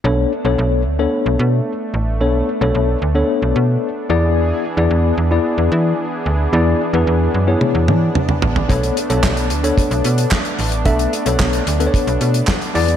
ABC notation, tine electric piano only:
X:1
M:4/4
L:1/16
Q:1/4=111
K:Bdor
V:1 name="Tine electric piano"
[B,DAc]2 z [B,DAc]3 z [B,DAc]4- [B,DAc] z4 | [B,DAc]2 z [B,DAc]3 z [B,DAc]4- [B,DAc] z2 [B,EGd]2- | [B,EGd]2 z [B,EGd]3 z [B,EGd]4- [B,EGd] z4 | [B,EGd]2 z [B,EGB]3 z [B,EGc]4- [B,EGc] z4 |
[B,DAc]2 z [B,DAc]3 z [B,DAc]4- [B,DAc] z4 | [B,DAe]2 z [B,DAc]3 z [B,DABc]4- [B,DABc] z2 [B,EGd]2 |]